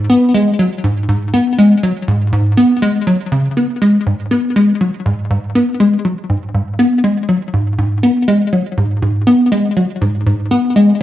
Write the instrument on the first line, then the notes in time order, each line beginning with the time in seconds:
analog synth bass
0.10 B3
0.34 G#3
0.59 F#3
0.84 G#2
1.09 G#2
1.34 B3
1.58 G#3
1.83 F#3
2.08 G#2
2.33 G#2
2.57 B3
2.82 G#3
3.07 F#3
3.32 C#3
3.57 B3
3.81 G#3
4.06 G#2
4.31 B3
4.56 G#3
4.81 F#3
5.06 G#2
5.30 G#2
5.55 B3
5.80 G#3
6.05 F#3
6.29 G#2
6.54 G#2
6.79 B3
7.04 G#3
7.29 F#3
7.53 G#2
7.78 G#2
8.03 B3
8.28 G#3
8.53 F#3
8.77 G#2
9.02 G#2
9.27 B3
9.52 G#3
9.77 F#3
10.01 G#2
10.26 G#2
10.51 B3
10.76 G#3